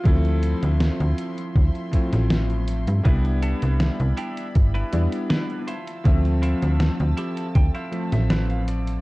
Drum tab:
HH |xxxxxxxxxxxxxxxx|xxxxxxxxxxxxxxxx|xxxxxxxxxxxxxxxx|
SD |----o------oo---|----o-------o---|----o------oo---|
BD |o-------o-o-----|o-------o-------|o-------o-------|